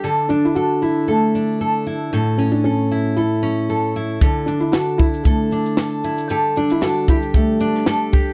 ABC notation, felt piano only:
X:1
M:4/4
L:1/16
Q:"Swing 16ths" 1/4=115
K:D
V:1 name="Felt piano"
z2 D E F2 E2 A,6 z2 | z2 C D C4 E6 z2 | z2 D E F2 E2 A,6 z2 | z2 D E F2 E2 A,6 z2 |]